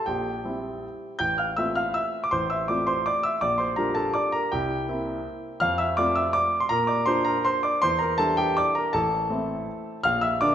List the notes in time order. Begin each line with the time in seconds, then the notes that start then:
0.06 A#1 G4 G5
0.45 G3 C4 E4
1.19 A1 G5 G6
1.38 F5 F6
1.57 A3 C4 F4 E5 E6
1.75 F5 F6
1.94 E5 E6
2.24 D6
2.31 A1 C5 C6
2.50 E5 E6
2.68 A3 C4 F4 D5 D6
2.87 C5 C6
3.06 D5 D6
3.23 E5 E6
3.41 A#1 D5 D6
3.58 C5 C6
3.76 G3 D4 F4 A#4 A#5
3.95 A4 A5
4.14 D5 D6
4.32 A#4 A#5
4.52 C2 G4 G5
4.88 A#3 C4 E4
5.60 F2 F5 F6
5.78 E5 E6
5.97 A3 C4 F4 D5 D6
6.15 E5 E6
6.33 D5 D6
6.60 C6
6.69 A#2 A#4 A#5
6.87 D5 D6
7.06 A#3 D4 F4 C5 C6
7.25 A#4 A#5
7.45 C5 C6
7.63 D5 D6
7.82 E2 C5 C6
7.99 A#4 A#5
8.18 G3 D4 E4 A4 A5
8.37 G4 G5
8.57 D5 D6
8.75 A#4 A#5
8.93 A1 A4 A5
9.30 A3 C4 E4
10.04 A#1 F5 F6
10.21 E5 E6
10.41 D3 A#3 D4 D5 D6